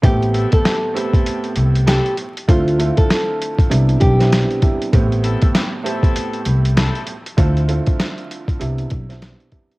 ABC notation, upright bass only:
X:1
M:4/4
L:1/16
Q:"Swing 16ths" 1/4=98
K:Am
V:1 name="Upright bass" clef=bass
A,,,3 z6 z C,,3 z3 | D,,3 z4 z C,,2 B,,,3 z3 | A,,,3 z6 z C,,3 z3 | D,,3 z4 z C,,2 B,,,3 z3 |]